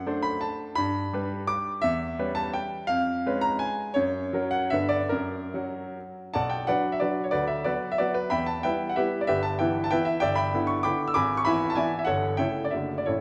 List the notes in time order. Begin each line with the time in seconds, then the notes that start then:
Already playing: F#2 F#5
0.07 A3 D4 C5
0.23 B5
0.41 A5
0.75 G2 B5
1.13 G3 D4 B4
1.47 D6
1.82 E2 E5
2.19 G3 C#4 B4
2.35 A5
2.54 G5
2.87 F2 F5
3.26 G#3 C#4 B4
3.41 A#5
3.59 G#5
3.94 F#2 C#5
4.33 F#3 C#4 A#4
4.51 F#5
4.70 G2 D3 B3 B4 E5
4.89 D5
5.09 F#2 A#4
5.54 F#3 C#4 F#4
6.34 B1 D5 F#5 A5
6.50 G5
6.67 F#3 D4 F#4 B4 D5 F#5
6.92 E5
7.00 F#3 D4 F#4 B4 D5
7.24 C#5
7.31 D2 F#4 B4 D5
7.47 E5
7.64 F#3 B3 F#4 B4 D5
7.92 E5
7.98 F#3 B3 F#4 B4 D5
8.14 B4
8.30 E2 E5 G5 B5
8.46 A5
8.63 G3 B3 E4 B4 E5 G5
8.89 F#5
8.96 G3 B3 E4 G4 B4 E5
9.21 D5
9.27 G1 G4 B4 E5
9.43 A5
9.59 E3 B3 E4 B4 E5 G5
9.84 A5
9.91 E3 B3 E4 B4 E5 G5
10.05 E5
10.20 G1 D5 E5 G5
10.35 E5 G5 B5
10.54 D3 B3 E4
10.67 C#6
10.83 D3 B3 E4 G5 B5 D6
11.08 E6
11.14 G#1 G#5 B5 D6
11.37 C#6
11.45 E3 B3 E4 E5 G#5 B5
11.70 A5
11.75 E3 B3 E4 D5 E5 G#5
11.99 E5
12.05 G1 A4 C#5 F#5
12.37 C#3 A3 E4 C#5 E5 G5
12.65 D5
12.71 F#1 D3 A3 F#4 E5
12.98 D5
13.06 A1 E4 A4 C#5